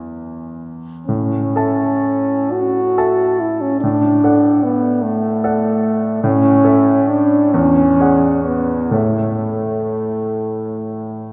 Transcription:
0.00 1.02 E2 soft
0.00 1.02 B4 soft
0.00 1.03 E5 soft
0.00 1.03 G#5 soft
1.06 1.54 A2 soft
1.06 2.54 C#4 medium
1.56 2.93 A4 soft
1.56 2.94 E5 soft
1.56 2.94 A5 soft
2.52 3.42 F#4 medium
2.98 3.79 A4 soft
2.98 3.79 E5 soft
2.98 3.79 A5 soft
3.40 3.63 E4 medium
3.61 3.80 C#4 medium
3.81 4.22 A2 soft
3.81 4.65 D4 medium
4.24 5.39 A4 soft
4.24 5.39 D5 soft
4.24 5.39 F#5 soft
4.63 5.04 B3 medium
5.03 6.23 A3 medium
5.44 6.20 A4 soft
5.44 6.20 D5 soft
5.44 6.20 F#5 soft
6.23 6.63 A2 soft
6.23 7.10 C#4 medium
6.64 7.49 A4 soft
6.64 7.50 C#5 soft
6.64 7.50 E5 soft
7.08 7.54 D4 medium
7.53 7.97 E2 soft
7.53 8.44 C#4 medium
8.00 8.91 G#4 soft
8.00 8.91 D5 soft
8.00 8.92 F#5 soft
8.44 8.93 B3 medium
8.91 11.33 A2 soft
8.91 11.33 A3 medium
8.91 11.33 A4 soft
8.91 11.33 C#5 soft
8.91 11.33 E5 soft

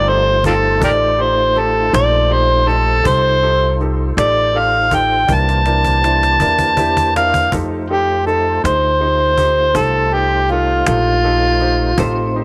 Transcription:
0.00 0.79 G1 medium
0.00 3.01 A3 medium
0.00 3.01 D#4 medium
0.00 3.01 F4 medium
0.00 3.01 C5 medium
0.00 0.10 D5 loud
0.08 0.35 D#4 soft
0.08 0.36 G4 soft
0.08 0.35 A4 medium
0.08 0.44 C5 medium
0.44 0.55 C4 medium
0.44 0.73 D#4 medium
0.44 0.54 F4 medium
0.44 0.73 G4 medium
0.44 0.82 A4 medium
0.44 0.73 C5 medium
0.44 cajon bass medium
0.80 1.90 A1 medium
0.80 1.09 D#4 medium
0.80 1.09 G4 soft
0.80 0.90 G4 medium
0.80 1.09 A4 medium
0.80 0.90 A#4 medium
0.80 1.23 D5 medium
0.80 cajon bass medium
1.19 1.47 D#4 medium
1.19 1.47 G4 soft
1.19 1.47 C5 medium
1.19 1.61 C5 medium
1.56 1.84 D#4 soft
1.56 1.84 G4 soft
1.56 1.84 A4 medium
1.56 1.94 A4 medium
1.56 cajon slap soft
1.93 3.02 A#1 loud
1.93 2.21 D#4 soft
1.93 2.21 G4 soft
1.93 2.21 A4 medium
1.93 2.35 D5 loud
1.93 cajon slap loud
2.31 2.59 D#4 medium
2.31 2.59 G4 medium
2.31 2.59 C5 medium
2.31 2.69 C5 medium
2.67 2.95 D#4 medium
2.67 2.96 G4 medium
2.67 2.96 A4 medium
2.67 3.09 A4 loud
2.67 cajon slap soft
3.03 4.13 C2 medium
3.03 5.25 D#4 medium
3.03 3.33 D#4 medium
3.03 5.25 F4 medium
3.03 3.33 G4 medium
3.03 5.26 A4 medium
3.03 3.33 A4 medium
3.03 5.25 C5 medium
3.03 cajon bass loud
3.07 3.78 C5 loud
3.43 3.70 D#4 soft
3.43 3.71 G4 soft
3.43 3.71 A4 medium
3.80 4.08 D#4 soft
3.80 4.08 G4 soft
3.80 4.09 A4 medium
3.80 cajon slap soft
4.17 5.25 A1 medium
4.17 4.45 D#4 medium
4.17 4.45 G4 soft
4.17 4.45 A4 medium
4.17 4.60 D5 loud
4.17 cajon slap loud
4.55 4.82 D#4 medium
4.55 4.82 G4 soft
4.55 4.82 A4 medium
4.59 4.96 F5 medium
4.91 5.19 D#4 medium
4.91 5.19 G4 medium
4.91 5.19 A4 medium
4.91 5.35 G5 medium
4.91 cajon bass medium
5.27 6.37 C2 medium
5.27 7.50 E3 medium
5.27 7.50 A#3 medium
5.27 5.56 D4 medium
5.27 5.56 E4 medium
5.27 7.50 G4 medium
5.27 5.56 A#4 medium
5.27 7.50 C5 medium
5.27 cajon bass medium
5.34 7.13 A5 loud
5.49 cajon slap soft
5.66 5.94 D4 soft
5.66 5.94 E4 soft
5.66 5.94 A#4 medium
5.66 cajon slap medium
5.85 cajon bass medium
6.04 6.32 D4 soft
6.04 6.31 E4 medium
6.04 6.32 C5 medium
6.04 cajon slap medium
6.23 cajon slap medium
6.40 7.48 E2 medium
6.40 6.69 D4 medium
6.40 6.68 E4 medium
6.40 6.69 A#4 medium
6.40 cajon bass medium
6.59 cajon bass medium
6.77 7.05 D4 medium
6.77 7.05 E4 medium
6.77 7.06 G4 medium
6.77 cajon bass medium
6.97 cajon bass medium
7.16 7.43 D4 medium
7.16 7.43 E4 medium
7.16 7.44 A#4 medium
7.16 7.51 F5 loud
7.16 cajon slap medium
7.34 cajon bass medium
7.51 8.60 F2 medium
7.51 11.94 A3 medium
7.51 11.94 D#4 medium
7.51 7.81 D#4 medium
7.51 11.94 F4 medium
7.51 7.81 G4 medium
7.51 7.80 A4 medium
7.51 11.94 C5 medium
7.51 cajon bass loud
7.90 8.17 D#4 medium
7.90 8.26 G4 medium
7.90 8.18 G4 soft
7.90 8.18 A4 medium
8.26 8.54 D#4 soft
8.26 8.54 G4 soft
8.26 8.62 A4 medium
8.26 8.55 A4 soft
8.26 cajon slap soft
8.64 9.72 D2 medium
8.64 8.91 D#4 medium
8.64 8.91 G4 soft
8.64 8.91 C5 medium
8.64 9.78 C5 medium
8.64 cajon slap medium
9.00 9.29 D#4 soft
9.00 9.28 G4 soft
9.00 9.29 C5 medium
9.38 9.66 D#4 medium
9.38 9.66 G4 soft
9.38 9.66 C5 medium
9.38 cajon bass medium
9.74 10.83 C2 medium
9.74 10.03 D#4 medium
9.74 10.02 G4 soft
9.74 10.15 A4 medium
9.74 10.03 C5 medium
9.74 cajon bass medium
10.13 10.41 D#4 soft
10.13 10.40 G4 soft
10.13 10.53 G4 medium
10.13 10.41 A4 medium
10.48 10.78 D#4 soft
10.48 10.86 F4 medium
10.48 10.79 G4 soft
10.48 cajon slap soft
10.53 10.79 A4 medium
10.87 11.95 A#1 medium
10.87 11.15 D#4 soft
10.87 12.31 F4 medium
10.87 11.15 G4 soft
10.87 11.15 A4 medium
10.87 cajon slap loud
11.24 11.52 D#4 medium
11.24 11.52 G4 soft
11.24 11.52 A4 medium
11.60 11.88 D#4 medium
11.60 11.89 G4 soft
11.60 11.89 C5 medium
11.60 cajon slap soft
11.96 12.44 A1 medium
11.96 12.44 A3 medium
11.96 12.44 C4 medium
11.96 12.44 D#4 medium
11.96 12.26 D#4 medium
11.96 12.44 F4 medium
11.96 12.26 G4 medium
11.96 12.26 A4 medium
11.96 cajon bass medium
12.00 12.44 C5 medium
12.36 12.44 D#4 medium
12.36 12.44 G4 medium
12.36 12.44 C5 medium

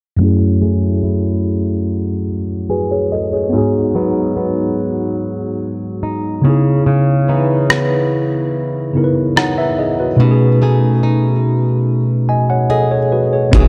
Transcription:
0.17 3.48 F#2 medium
0.17 3.56 F#3 medium
0.17 3.48 A3 medium
0.21 3.50 C#4 medium
0.21 3.50 E4 medium
0.21 2.27 G#4 medium
0.61 3.61 A3 medium
0.61 1.02 E4 medium
0.61 2.69 G#4 medium
1.03 3.61 E4 medium
2.70 2.90 F#4 medium
2.70 3.98 G#4 medium
2.70 2.90 B4 medium
2.91 3.11 G#4 medium
2.91 3.11 C#5 medium
3.12 3.32 A4 medium
3.12 3.32 D#5 medium
3.33 3.57 G#4 soft
3.33 3.72 C#5 medium
3.50 6.53 G#2 medium
3.50 6.39 B3 medium
3.50 6.40 D#4 medium
3.55 6.42 F#4 medium
3.55 6.43 G#4 medium
3.95 6.53 F#3 medium
3.95 4.36 B3 medium
3.95 6.03 D#4 medium
4.36 6.89 B3 medium
6.03 6.89 D#4 medium
6.42 8.89 C#3 medium
6.42 6.85 C#3 medium
6.42 8.90 B3 medium
6.46 8.91 D#4 medium
6.46 8.92 E4 medium
6.46 8.93 G#4 medium
6.86 10.19 C#3 medium
7.28 10.28 E3 medium
7.28 7.69 B3 medium
7.28 9.36 D#4 medium
7.70 10.61 B3 medium
7.70 cross-stick loud
8.94 10.19 C#3 medium
8.94 10.20 B3 soft
8.94 10.20 D#4 soft
8.94 10.21 E4 medium
8.98 9.03 A#4 soft
9.04 9.41 B4 medium
9.36 10.62 D#4 medium
9.36 9.57 C#5 medium
9.36 9.57 F#5 medium
9.36 cross-stick loud
9.58 9.78 B4 medium
9.58 9.77 E5 medium
9.79 9.99 G#4 medium
9.79 9.98 D#5 medium
10.00 10.22 F#4 soft
10.00 10.39 B4 medium
10.16 13.47 B2 medium
10.16 13.53 B2 medium
10.16 13.48 A3 medium
10.16 13.49 C#4 medium
10.21 13.50 D#4 medium
10.21 12.26 F#4 medium
10.21 10.29 G4 medium
10.31 12.30 G#4 medium
10.62 13.61 A3 medium
10.62 11.03 D#4 medium
10.62 12.69 G#4 medium
11.03 13.68 D#4 medium
12.29 12.49 D#5 medium
12.29 12.48 G#5 medium
12.50 12.69 C#5 medium
12.50 12.69 F#5 medium
12.70 13.68 G#4 medium
12.70 12.90 A4 medium
12.70 12.90 D#5 medium
12.91 13.11 G#4 medium
12.91 13.11 C#5 medium
13.12 13.32 F#4 medium
13.12 13.31 B4 medium
13.33 13.54 G#4 soft
13.33 13.68 C#5 medium
13.52 13.68 E1 loud
13.52 13.68 E3 medium
13.52 13.68 B3 medium
13.52 13.68 D#4 medium
13.52 13.68 F#4 medium
13.52 kick loud
13.52 closed hi-hat medium
13.56 13.68 G#4 loud

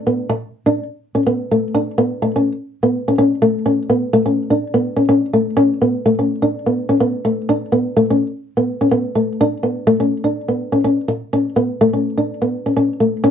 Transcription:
0.07 0.23 B3 medium
0.29 muted nylon-string guitar stroke medium
0.66 0.83 D4 medium
1.15 1.22 C#4 medium
1.27 1.43 B3 medium
1.51 1.67 A3 medium
1.75 1.90 D4 medium
1.98 2.14 B3 medium
2.22 2.31 A3 medium
2.36 2.52 C#4 medium
2.83 2.99 B3 medium
3.08 3.15 C#4 medium
3.18 3.34 C#4 medium
3.42 3.58 A3 medium
3.66 3.82 C#4 medium
3.90 4.06 B3 medium
4.13 4.22 A3 medium
4.26 4.42 C#4 medium
4.50 4.66 D4 medium
4.74 4.90 B3 medium
4.96 5.04 C#4 medium
5.09 5.25 C#4 medium
5.33 5.49 A3 medium
5.57 5.73 C#4 medium
5.82 5.97 B3 medium
6.06 6.14 A3 medium
6.19 6.35 C#4 medium
6.42 6.58 D4 medium
6.66 6.82 B3 medium
6.89 6.97 C#4 medium
7.00 7.17 B3 medium
7.25 7.41 A3 medium
7.49 7.65 D4 medium
7.72 7.88 B3 medium
7.97 8.05 A3 medium
8.10 8.26 C#4 medium
8.57 8.73 B3 medium
8.81 8.88 C#4 medium
8.91 9.08 B3 medium
9.15 9.32 A3 medium
9.41 9.57 D4 medium
9.63 9.80 B3 medium
9.87 9.96 A3 medium
10.00 10.16 C#4 medium
10.24 10.40 D4 medium
10.48 10.65 B3 medium
10.72 10.80 C#4 medium
10.84 11.00 C#4 medium
11.08 muted nylon-string guitar stroke medium
11.33 11.49 C#4 medium
11.56 11.72 B3 medium
11.81 11.89 A3 medium
11.93 12.09 C#4 medium
12.18 12.33 D4 medium
12.42 12.57 B3 medium
12.66 12.73 C#4 medium
12.77 12.92 C#4 medium
13.00 13.16 A3 medium
13.24 13.31 C#4 medium

